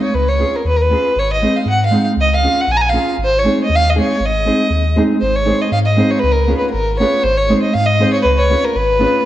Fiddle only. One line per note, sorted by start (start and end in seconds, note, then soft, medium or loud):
0.03 0.16 C#5 medium
0.15 0.30 B4 loud
0.29 0.57 C#5 medium
0.56 0.66 A#4 medium
0.67 0.78 B4 loud
0.76 0.83 A#4 medium
0.82 1.20 B4 loud
1.19 1.30 C#5 loud
1.33 1.58 D#5 medium
1.56 1.67 F5 medium
1.70 1.81 F#5 loud
1.85 2.06 F5 medium
2.21 2.31 D#5 loud
2.35 2.62 F5 loud
2.61 2.73 F#5 medium
2.71 2.78 G#5 loud
2.76 2.83 A#5 loud
2.81 2.91 G#5 loud
2.89 3.11 F5 loud
3.24 3.40 C5 loud
3.39 3.61 C#5 medium
3.64 3.77 D#5 medium
3.75 3.91 F5 loud
3.90 3.98 D#5 medium
4.00 4.27 C#5 loud
4.26 4.99 D#5 loud
5.21 5.37 C5 medium
5.35 5.63 C#5 medium
5.62 5.72 D#5 medium
5.72 5.79 F5 loud
5.86 6.12 D#5 medium
6.10 6.20 C#5 medium
6.19 6.33 B4 loud
6.32 6.57 A#4 medium
6.58 6.70 B4 medium
6.70 6.96 A#4 loud
6.99 7.25 C#5 medium
7.23 7.38 C5 loud
7.37 7.61 C#5 loud
7.62 7.75 D#5 medium
7.74 7.87 F5 loud
7.86 8.13 D#5 loud
8.13 8.20 C#5 medium
8.20 8.40 B4 loud
8.20 8.24 C#5 medium
8.38 8.66 C#5 medium
8.64 8.78 A#4 medium
8.76 9.25 B4 loud